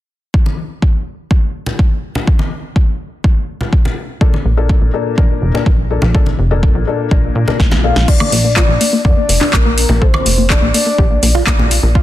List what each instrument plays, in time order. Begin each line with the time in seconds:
0.34 kick
0.46 high conga
0.82 kick
1.31 kick
1.66 low conga
1.79 kick
2.15 low conga
2.27 kick
2.39 high conga
2.76 kick
3.24 kick
3.61 low conga
3.73 kick
3.85 low conga
4.21 felt piano A#2 A#3 D4 A4, kick
4.34 high conga
4.45 analog synth bass A#1
4.57 felt piano A#2 A#3 D4 A4
4.69 kick
4.82 analog synth bass A#1
4.94 felt piano A#2 A#3 D4 A4
5.18 analog synth bass F2, felt piano A#2 A#3 D4 A#4, kick
5.42 analog synth bass F1
5.54 felt piano A#2 A#3 D4 A#4, low conga
5.66 analog synth bass A#1, kick
5.90 felt piano A#2 A#3 D4 A4
6.02 analog synth bass A#1, low conga
6.15 felt piano A#2 A#3 D4 A4, kick
6.26 high conga
6.39 analog synth bass F1
6.51 felt piano A#2 A#3 D4 A4
6.63 kick
6.75 analog synth bass A#1
6.87 felt piano A#2 A#3 D4 A4
7.11 analog synth bass A#1, felt piano A#2 A#3 D4 A#4, kick
7.36 analog synth bass A#2
7.48 felt piano A#2 A#3 D4 A#4, low conga
7.60 analog synth bass A#1, kick, snare
7.71 snare, high conga, low conga
7.84 felt piano A#2 A#3 D4 A4, soft synth lead F5
7.96 analog synth bass A#1, snare
8.08 synth pluck F4, soft synth lead D5, kick, crash
8.20 synth pluck A#3, high conga, high woodblock
8.32 analog synth bass A#1, synth pluck A#3, open hi-hat
8.44 synth pluck A#3
8.56 synth pluck F4, soft synth lead D5, kick, clap, high conga
8.69 analog synth bass A#1, synth pluck A#3
8.81 synth pluck A#3, open hi-hat
8.93 synth pluck A#3
9.04 analog synth bass F2, synth pluck D4, soft synth lead D5, kick
9.17 synth pluck A#3
9.29 analog synth bass F1, synth pluck A#3, open hi-hat
9.41 synth pluck D4, clap, low conga
9.53 analog synth bass A#1, synth pluck A#3, soft synth lead A#4, kick, clap, high woodblock
9.66 synth pluck A#3
9.78 open hi-hat
9.89 analog synth bass A#1, synth pluck A#3, low conga
10.01 synth pluck A4, soft synth lead C5, kick
10.14 synth pluck A#3, high conga, high woodblock
10.26 analog synth bass F1, synth pluck A#3, open hi-hat
10.38 synth pluck A#3
10.50 synth pluck A4, soft synth lead D5, kick, clap, high conga
10.62 analog synth bass A#1, synth pluck A#3
10.74 synth pluck A#3, soft synth lead D5, open hi-hat
10.86 synth pluck A#3
10.98 analog synth bass A#1, synth pluck G4, kick
11.11 synth pluck A#3
11.23 analog synth bass A#1, synth pluck A#3, open hi-hat
11.35 synth pluck F4, low conga
11.47 analog synth bass A#1, synth pluck A#3, kick, clap, high woodblock
11.59 synth pluck A#3, low conga
11.71 open hi-hat
11.83 analog synth bass A#1, synth pluck A#3
11.95 synth pluck F4, kick